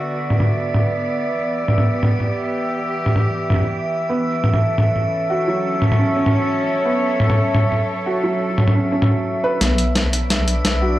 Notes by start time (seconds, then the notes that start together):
Already playing: D3 B3 F#4 D5 E5
0.30 mid tom
0.40 mid tom
0.74 mid tom
1.34 E3
1.54 G4
1.68 mid tom
1.78 mid tom
2.03 mid tom
2.20 mid tom
3.06 mid tom
3.16 mid tom
3.50 mid tom
3.52 mid tom
3.54 mid tom
3.57 mid tom
3.59 mid tom
3.62 mid tom
3.64 mid tom
4.09 B3
4.42 A4, mid tom
4.54 C#4, mid tom
4.78 mid tom
4.96 mid tom
5.30 F#4 C#5
5.48 F#3
5.82 mid tom
5.92 mid tom
5.99 C#4
6.17 C#4
6.26 mid tom
6.85 F#3 B3
7.20 mid tom
7.30 mid tom
7.54 mid tom
7.72 mid tom
8.06 F#4
8.23 F#3
8.58 mid tom
8.68 mid tom
8.75 C#4
8.92 C#4
9.02 mid tom
9.44 B4
9.61 B1 B3 E5, snare, closed hi-hat
9.78 closed hi-hat
9.96 snare, closed hi-hat
10.08 B4
10.13 D4, closed hi-hat
10.30 snare, closed hi-hat
10.47 D5, closed hi-hat
10.64 B1, snare, closed hi-hat
10.82 F#4